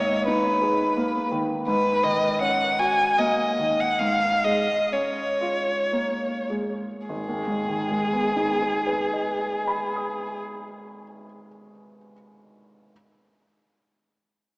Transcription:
Already playing: grand piano G#2 D#3 A#3 D#4 G#4, violin C#5
0.27 grand piano D#4, violin B4
0.62 grand piano G#4
0.97 grand piano A#3
1.31 grand piano D#3
1.67 grand piano G#2, violin B4
2.03 grand piano D#3, violin D#5
2.41 grand piano C#4, violin F#5
2.79 grand piano F#4, violin G#5
3.18 grand piano A#3, violin D#5
3.59 grand piano D#3
3.80 violin F#5
3.99 grand piano G#2, violin F5
4.44 grand piano G#3, violin D#5
4.92 grand piano C#4, violin C#5
5.41 grand piano F4
5.93 grand piano A#3
6.50 grand piano G#3
7.07 grand piano G#1, violin G#4
7.28 grand piano D#2
7.47 grand piano G#2
7.68 grand piano D#3
7.90 grand piano G#3
8.13 grand piano B3
8.36 grand piano D#4
8.62 grand piano G#4
8.87 grand piano B4
9.13 grand piano D#5
9.40 grand piano G#5
9.67 grand piano B5
9.96 grand piano D#6

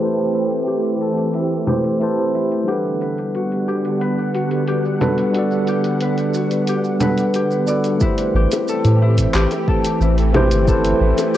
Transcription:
Already playing: string machine E3 A3 C4 G4, tine electric piano A3 B4 C5, harp E4 G4
0.00 tine electric piano E4 G4 B4, harp A4, closed hi-hat, shaker
0.05 tine electric piano C5
0.17 shaker
0.34 harp E4, closed hi-hat, shaker
0.51 closed hi-hat, shaker
0.67 harp G4, closed hi-hat, shaker
0.84 closed hi-hat, shaker
1.01 harp A4, shaker
1.18 closed hi-hat, shaker
1.34 harp E4, closed hi-hat, shaker
1.51 shaker
1.66 tine electric piano A3 E4 G4 B4 C5, harp G4, closed hi-hat, low conga, shaker
1.84 closed hi-hat, shaker
1.99 tine electric piano A3 E4 G4 B4 C5, harp A4, closed hi-hat, shaker
2.18 shaker
2.34 harp E4, shaker
2.51 closed hi-hat, shaker
2.64 string machine D3 G3 B3 F#5, tine electric piano G3 D4 F#5, harp G4
2.68 tine electric piano A4 B4, closed hi-hat, shaker
2.85 shaker
3.01 harp B4, closed hi-hat, shaker
3.18 closed hi-hat, shaker
3.35 harp F#4, closed hi-hat, shaker
3.52 closed hi-hat, shaker
3.68 harp G4, shaker
3.85 closed hi-hat, shaker
4.01 harp B4, closed hi-hat, shaker
4.18 shaker
4.35 harp F#4, closed hi-hat, shaker
4.51 closed hi-hat, shaker
4.67 harp G4, closed hi-hat, shaker
4.85 shaker
5.00 tine electric piano G3 D4 F#4 A4 B4, harp B4, low conga, shaker
5.18 closed hi-hat, shaker
5.31 tine electric piano G3 D4, harp F#4, closed hi-hat, shaker
5.35 tine electric piano A4 D5 F#5
5.51 shaker
5.67 harp G4, closed hi-hat, shaker
5.84 closed hi-hat, shaker
6.00 harp B4, closed hi-hat, shaker
6.18 closed hi-hat, shaker
6.34 harp F#4, shaker
6.51 closed hi-hat, shaker
6.67 harp G4, closed hi-hat, shaker
6.84 shaker
6.99 tine electric piano G3 D4 A4 F#5, harp B4, closed hi-hat, low conga, shaker
7.04 tine electric piano B4
7.18 closed hi-hat, shaker
7.34 harp G4, closed hi-hat, shaker
7.51 shaker
7.66 tine electric piano G3 D4 F#4 A4 B4, harp D5, shaker
7.84 closed hi-hat, shaker
7.98 tine electric piano A3 E4 G4, string machine A3 G4, kick, shaker
8.02 string machine E3 C4, harp E4, tine electric piano B4 C5
8.18 closed hi-hat, shaker
8.34 analog synth bass A1, harp G4
8.51 closed hi-hat, high bongo, shaker
8.68 harp A4, shaker
8.84 analog synth bass A2, closed hi-hat, shaker
9.02 harp E4
9.18 kick, closed hi-hat, shaker
9.34 analog synth bass A1, harp G4, clap, shaker
9.51 closed hi-hat, high bongo, shaker
9.68 harp A4, kick
9.85 closed hi-hat, shaker
10.00 analog synth bass A1, harp E4, shaker
10.18 closed hi-hat, shaker
10.33 tine electric piano A3 E4 G4 B4 C5, harp G4, high bongo, low conga
10.51 analog synth bass G1, closed hi-hat, shaker
10.65 tine electric piano A3 E4 G4, string machine A4, harp A4, kick, shaker
10.70 tine electric piano B4 C5
10.85 closed hi-hat, shaker
11.01 analog synth bass A1, harp E4
11.18 closed hi-hat, high bongo, shaker
11.34 harp G4

